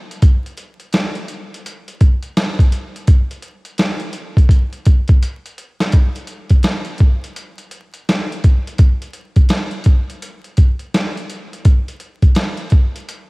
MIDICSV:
0, 0, Header, 1, 2, 480
1, 0, Start_track
1, 0, Tempo, 714286
1, 150, Time_signature, 4, 2, 24, 8
1, 8937, End_track
2, 0, Start_track
2, 0, Title_t, "Drums"
2, 75, Note_on_c, 9, 42, 57
2, 142, Note_off_c, 9, 42, 0
2, 149, Note_on_c, 9, 42, 93
2, 151, Note_on_c, 9, 36, 110
2, 216, Note_off_c, 9, 42, 0
2, 219, Note_off_c, 9, 36, 0
2, 310, Note_on_c, 9, 42, 50
2, 377, Note_off_c, 9, 42, 0
2, 386, Note_on_c, 9, 42, 67
2, 453, Note_off_c, 9, 42, 0
2, 535, Note_on_c, 9, 42, 46
2, 602, Note_off_c, 9, 42, 0
2, 622, Note_on_c, 9, 42, 84
2, 631, Note_on_c, 9, 38, 106
2, 689, Note_off_c, 9, 42, 0
2, 698, Note_off_c, 9, 38, 0
2, 774, Note_on_c, 9, 42, 47
2, 841, Note_off_c, 9, 42, 0
2, 862, Note_on_c, 9, 42, 67
2, 929, Note_off_c, 9, 42, 0
2, 1036, Note_on_c, 9, 42, 55
2, 1103, Note_off_c, 9, 42, 0
2, 1116, Note_on_c, 9, 42, 92
2, 1183, Note_off_c, 9, 42, 0
2, 1263, Note_on_c, 9, 42, 50
2, 1331, Note_off_c, 9, 42, 0
2, 1349, Note_on_c, 9, 42, 70
2, 1351, Note_on_c, 9, 36, 88
2, 1416, Note_off_c, 9, 42, 0
2, 1418, Note_off_c, 9, 36, 0
2, 1496, Note_on_c, 9, 42, 47
2, 1563, Note_off_c, 9, 42, 0
2, 1592, Note_on_c, 9, 42, 95
2, 1593, Note_on_c, 9, 38, 113
2, 1660, Note_off_c, 9, 38, 0
2, 1660, Note_off_c, 9, 42, 0
2, 1741, Note_on_c, 9, 36, 89
2, 1749, Note_on_c, 9, 42, 52
2, 1809, Note_off_c, 9, 36, 0
2, 1816, Note_off_c, 9, 42, 0
2, 1829, Note_on_c, 9, 42, 75
2, 1896, Note_off_c, 9, 42, 0
2, 1989, Note_on_c, 9, 42, 57
2, 2056, Note_off_c, 9, 42, 0
2, 2066, Note_on_c, 9, 42, 100
2, 2069, Note_on_c, 9, 36, 106
2, 2133, Note_off_c, 9, 42, 0
2, 2137, Note_off_c, 9, 36, 0
2, 2223, Note_on_c, 9, 42, 50
2, 2291, Note_off_c, 9, 42, 0
2, 2301, Note_on_c, 9, 42, 69
2, 2368, Note_off_c, 9, 42, 0
2, 2453, Note_on_c, 9, 42, 50
2, 2520, Note_off_c, 9, 42, 0
2, 2540, Note_on_c, 9, 42, 76
2, 2549, Note_on_c, 9, 38, 108
2, 2607, Note_off_c, 9, 42, 0
2, 2616, Note_off_c, 9, 38, 0
2, 2686, Note_on_c, 9, 42, 51
2, 2753, Note_off_c, 9, 42, 0
2, 2775, Note_on_c, 9, 42, 70
2, 2842, Note_off_c, 9, 42, 0
2, 2936, Note_on_c, 9, 36, 87
2, 2945, Note_on_c, 9, 42, 57
2, 3003, Note_off_c, 9, 36, 0
2, 3012, Note_off_c, 9, 42, 0
2, 3018, Note_on_c, 9, 36, 89
2, 3029, Note_on_c, 9, 42, 90
2, 3085, Note_off_c, 9, 36, 0
2, 3096, Note_off_c, 9, 42, 0
2, 3176, Note_on_c, 9, 42, 51
2, 3243, Note_off_c, 9, 42, 0
2, 3262, Note_on_c, 9, 42, 76
2, 3269, Note_on_c, 9, 36, 91
2, 3329, Note_off_c, 9, 42, 0
2, 3336, Note_off_c, 9, 36, 0
2, 3411, Note_on_c, 9, 42, 50
2, 3421, Note_on_c, 9, 36, 90
2, 3478, Note_off_c, 9, 42, 0
2, 3488, Note_off_c, 9, 36, 0
2, 3512, Note_on_c, 9, 42, 102
2, 3579, Note_off_c, 9, 42, 0
2, 3667, Note_on_c, 9, 42, 54
2, 3734, Note_off_c, 9, 42, 0
2, 3750, Note_on_c, 9, 42, 73
2, 3817, Note_off_c, 9, 42, 0
2, 3900, Note_on_c, 9, 38, 84
2, 3905, Note_on_c, 9, 42, 60
2, 3968, Note_off_c, 9, 38, 0
2, 3972, Note_off_c, 9, 42, 0
2, 3980, Note_on_c, 9, 42, 89
2, 3988, Note_on_c, 9, 36, 97
2, 4047, Note_off_c, 9, 42, 0
2, 4055, Note_off_c, 9, 36, 0
2, 4138, Note_on_c, 9, 42, 47
2, 4205, Note_off_c, 9, 42, 0
2, 4215, Note_on_c, 9, 42, 64
2, 4282, Note_off_c, 9, 42, 0
2, 4365, Note_on_c, 9, 42, 49
2, 4372, Note_on_c, 9, 36, 74
2, 4432, Note_off_c, 9, 42, 0
2, 4439, Note_off_c, 9, 36, 0
2, 4455, Note_on_c, 9, 42, 80
2, 4464, Note_on_c, 9, 38, 100
2, 4522, Note_off_c, 9, 42, 0
2, 4531, Note_off_c, 9, 38, 0
2, 4601, Note_on_c, 9, 42, 43
2, 4668, Note_off_c, 9, 42, 0
2, 4690, Note_on_c, 9, 42, 58
2, 4706, Note_on_c, 9, 36, 91
2, 4757, Note_off_c, 9, 42, 0
2, 4773, Note_off_c, 9, 36, 0
2, 4864, Note_on_c, 9, 42, 54
2, 4931, Note_off_c, 9, 42, 0
2, 4947, Note_on_c, 9, 42, 88
2, 5015, Note_off_c, 9, 42, 0
2, 5095, Note_on_c, 9, 42, 47
2, 5162, Note_off_c, 9, 42, 0
2, 5183, Note_on_c, 9, 42, 75
2, 5250, Note_off_c, 9, 42, 0
2, 5334, Note_on_c, 9, 42, 47
2, 5401, Note_off_c, 9, 42, 0
2, 5435, Note_on_c, 9, 42, 87
2, 5436, Note_on_c, 9, 38, 105
2, 5503, Note_off_c, 9, 38, 0
2, 5503, Note_off_c, 9, 42, 0
2, 5592, Note_on_c, 9, 42, 55
2, 5659, Note_off_c, 9, 42, 0
2, 5671, Note_on_c, 9, 42, 67
2, 5673, Note_on_c, 9, 36, 94
2, 5738, Note_off_c, 9, 42, 0
2, 5740, Note_off_c, 9, 36, 0
2, 5828, Note_on_c, 9, 42, 54
2, 5896, Note_off_c, 9, 42, 0
2, 5902, Note_on_c, 9, 42, 85
2, 5908, Note_on_c, 9, 36, 106
2, 5970, Note_off_c, 9, 42, 0
2, 5975, Note_off_c, 9, 36, 0
2, 6061, Note_on_c, 9, 42, 51
2, 6128, Note_off_c, 9, 42, 0
2, 6138, Note_on_c, 9, 42, 68
2, 6205, Note_off_c, 9, 42, 0
2, 6289, Note_on_c, 9, 42, 47
2, 6293, Note_on_c, 9, 36, 81
2, 6357, Note_off_c, 9, 42, 0
2, 6360, Note_off_c, 9, 36, 0
2, 6376, Note_on_c, 9, 42, 82
2, 6385, Note_on_c, 9, 38, 103
2, 6444, Note_off_c, 9, 42, 0
2, 6452, Note_off_c, 9, 38, 0
2, 6525, Note_on_c, 9, 42, 43
2, 6592, Note_off_c, 9, 42, 0
2, 6612, Note_on_c, 9, 42, 68
2, 6626, Note_on_c, 9, 36, 85
2, 6679, Note_off_c, 9, 42, 0
2, 6694, Note_off_c, 9, 36, 0
2, 6785, Note_on_c, 9, 42, 57
2, 6852, Note_off_c, 9, 42, 0
2, 6869, Note_on_c, 9, 42, 95
2, 6937, Note_off_c, 9, 42, 0
2, 7017, Note_on_c, 9, 42, 43
2, 7085, Note_off_c, 9, 42, 0
2, 7103, Note_on_c, 9, 42, 74
2, 7109, Note_on_c, 9, 36, 81
2, 7170, Note_off_c, 9, 42, 0
2, 7176, Note_off_c, 9, 36, 0
2, 7253, Note_on_c, 9, 42, 44
2, 7320, Note_off_c, 9, 42, 0
2, 7354, Note_on_c, 9, 38, 106
2, 7354, Note_on_c, 9, 42, 94
2, 7421, Note_off_c, 9, 42, 0
2, 7422, Note_off_c, 9, 38, 0
2, 7509, Note_on_c, 9, 42, 51
2, 7576, Note_off_c, 9, 42, 0
2, 7591, Note_on_c, 9, 42, 69
2, 7658, Note_off_c, 9, 42, 0
2, 7750, Note_on_c, 9, 42, 56
2, 7817, Note_off_c, 9, 42, 0
2, 7828, Note_on_c, 9, 42, 89
2, 7831, Note_on_c, 9, 36, 98
2, 7895, Note_off_c, 9, 42, 0
2, 7898, Note_off_c, 9, 36, 0
2, 7985, Note_on_c, 9, 42, 50
2, 8053, Note_off_c, 9, 42, 0
2, 8064, Note_on_c, 9, 42, 61
2, 8131, Note_off_c, 9, 42, 0
2, 8214, Note_on_c, 9, 42, 44
2, 8216, Note_on_c, 9, 36, 78
2, 8281, Note_off_c, 9, 42, 0
2, 8283, Note_off_c, 9, 36, 0
2, 8300, Note_on_c, 9, 42, 76
2, 8308, Note_on_c, 9, 38, 104
2, 8367, Note_off_c, 9, 42, 0
2, 8375, Note_off_c, 9, 38, 0
2, 8449, Note_on_c, 9, 42, 45
2, 8516, Note_off_c, 9, 42, 0
2, 8535, Note_on_c, 9, 42, 59
2, 8549, Note_on_c, 9, 36, 87
2, 8602, Note_off_c, 9, 42, 0
2, 8616, Note_off_c, 9, 36, 0
2, 8707, Note_on_c, 9, 42, 56
2, 8775, Note_off_c, 9, 42, 0
2, 8794, Note_on_c, 9, 42, 91
2, 8862, Note_off_c, 9, 42, 0
2, 8937, End_track
0, 0, End_of_file